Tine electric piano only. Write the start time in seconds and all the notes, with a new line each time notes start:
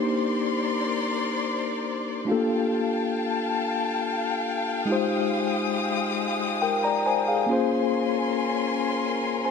Already playing: A#3 D4 D#4 G4 C5
2.25 A3 D4 F4
2.30 A#3 G4 A4
4.86 G#3 D#4 F4
4.90 G4 C5
6.62 A#4 G5
6.84 D5 A#5
7.06 C5 G#5
7.28 G#4 F5
7.46 A#3 C#4 F4
7.51 G#4 C5
9.45 C5 G#5